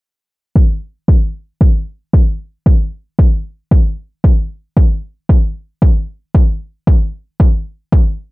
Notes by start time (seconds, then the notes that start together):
0.56 kick
1.08 kick
1.61 kick
2.13 kick
2.66 kick
3.19 kick
3.71 kick
4.24 kick
4.77 kick
5.29 kick
5.82 kick
6.35 kick
6.87 kick
7.40 kick
7.92 kick